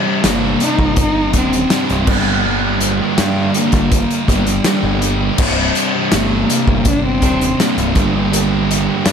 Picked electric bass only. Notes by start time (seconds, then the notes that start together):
0.25 G1
0.79 G1
1.34 D#1
1.91 C1
2.08 G1
3.19 G2
3.73 G1
4.28 G1
4.83 G1
5.39 C1
6.13 G1
6.68 G1
7.22 D#1
7.78 C1
7.96 G1
9.06 G2